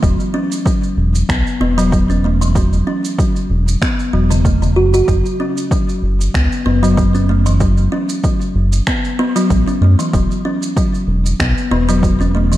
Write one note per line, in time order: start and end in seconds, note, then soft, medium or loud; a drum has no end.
0.03 0.17 E1 medium
0.03 0.19 F#3 medium
0.03 kick loud
0.03 shaker medium
0.20 shaker soft
0.34 0.44 C#4 medium
0.52 shaker medium
0.66 0.82 F#3 medium
0.66 kick loud
0.66 shaker medium
0.84 shaker soft
0.97 1.24 E1 medium
1.15 shaker medium
1.29 1.43 B1 medium
1.29 1.45 B3 medium
1.29 finger snap medium
1.29 kick loud
1.29 shaker medium
1.47 shaker soft
1.60 2.83 E1 medium
1.60 1.76 B3 medium
1.78 1.91 F#3 loud
1.78 shaker medium
1.92 2.09 F#3 medium
1.92 kick loud
1.92 shaker medium
2.10 2.23 C#4 medium
2.10 shaker soft
2.24 2.40 A3 medium
2.41 2.54 E3 medium
2.41 shaker medium
2.55 2.72 F#3 medium
2.55 kick loud
2.55 shaker medium
2.73 shaker soft
2.87 2.97 C#4 medium
3.05 shaker medium
3.18 3.35 F#3 medium
3.18 kick loud
3.18 shaker medium
3.36 shaker soft
3.50 3.76 E1 loud
3.68 shaker medium
3.82 3.98 B3 medium
3.82 finger snap medium
3.82 kick loud
3.82 shaker medium
3.99 shaker soft
4.13 4.77 E1 medium
4.13 4.30 F#3 medium
4.30 4.44 C#3 medium
4.30 shaker medium
4.45 4.61 A3 medium
4.45 kick loud
4.45 shaker soft
4.62 4.76 C#3 medium
4.62 shaker soft
4.76 5.02 F#1 medium
4.76 4.92 F#4 medium
4.94 5.07 F#4 medium
4.94 shaker medium
5.08 5.22 F#1 medium
5.08 5.24 F#3 medium
5.08 kick medium
5.08 shaker medium
5.26 shaker soft
5.40 5.50 C#4 medium
5.58 shaker medium
5.71 5.88 F#3 medium
5.71 kick loud
5.71 shaker medium
5.89 shaker soft
6.02 6.29 F#1 loud
6.21 shaker medium
6.34 6.48 C#2 medium
6.34 6.51 B3 medium
6.34 finger snap medium
6.34 kick medium
6.34 shaker medium
6.52 shaker soft
6.66 7.88 F#1 medium
6.66 6.81 B3 medium
6.83 6.96 F#3 loud
6.83 shaker medium
6.97 7.14 F#3 medium
6.97 kick loud
6.97 shaker soft
7.15 7.28 C#4 medium
7.15 shaker soft
7.29 7.45 A3 medium
7.46 7.59 E3 medium
7.46 shaker medium
7.60 7.77 F#3 medium
7.60 kick loud
7.60 shaker medium
7.78 shaker soft
7.92 8.02 C#4 medium
8.09 shaker medium
8.24 8.40 F#3 medium
8.24 kick medium
8.24 shaker soft
8.41 shaker soft
8.55 8.81 F#1 medium
8.73 shaker medium
8.87 9.03 B3 medium
8.87 finger snap medium
8.87 kick medium
8.87 shaker soft
9.05 shaker soft
9.19 9.34 B3 loud
9.36 9.49 F#3 loud
9.36 shaker medium
9.50 9.64 A1 medium
9.50 9.67 F#3 medium
9.50 kick medium
9.50 shaker soft
9.68 9.80 C#4 medium
9.68 shaker soft
9.81 9.96 F#2 medium
9.81 9.98 A3 medium
9.99 10.12 E3 medium
9.99 shaker medium
10.13 10.28 E1 medium
10.13 10.30 F#3 medium
10.13 kick medium
10.13 shaker soft
10.31 shaker soft
10.45 10.55 C#4 medium
10.63 shaker medium
10.77 10.93 F#3 medium
10.77 kick medium
10.77 shaker medium
10.94 shaker soft
11.07 11.34 E1 loud
11.26 shaker medium
11.40 11.54 B1 medium
11.40 11.56 B3 medium
11.40 finger snap medium
11.40 kick loud
11.40 shaker medium
11.58 shaker soft
11.71 12.57 E1 medium
11.71 11.87 B3 loud
11.89 12.01 F#3 loud
11.89 shaker medium
12.03 12.19 F#3 medium
12.03 kick medium
12.03 shaker soft
12.21 12.33 C#4 medium
12.21 shaker soft
12.35 12.51 A3 medium
12.52 12.57 E3 medium
12.52 shaker medium